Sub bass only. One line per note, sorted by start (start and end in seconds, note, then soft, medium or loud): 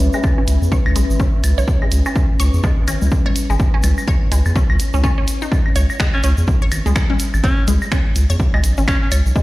0.48 0.57 C#2 loud
0.62 0.69 E2 loud
0.86 0.93 C#2 medium
0.96 1.05 B1 medium
1.10 1.17 G#1 medium
1.44 1.53 C#2 loud
1.58 1.65 B1 medium
1.92 2.01 C#2 loud
2.40 2.49 C#2 loud
2.54 2.61 E2 loud
2.88 2.97 G#1 medium
3.02 3.09 C#2 medium
3.50 3.56 G#1 medium
3.84 3.93 C#2 loud
4.32 4.41 C#2 loud
4.46 4.53 E2 loud
4.70 4.77 C#2 medium
4.94 5.09 C#2 medium
5.76 5.85 C#2 loud
6.24 6.33 C#2 loud
6.38 6.45 E2 loud
6.72 6.81 G#1 medium
6.86 6.93 C#2 medium
7.34 7.41 G#1 medium
7.68 7.77 C#2 loud
8.16 8.25 C#2 loud
8.30 8.37 E2 medium
8.54 8.61 C#2 medium
8.64 8.73 B1 medium
8.78 8.85 G#1 medium
9.12 9.21 C#2 loud
9.26 9.33 B1 medium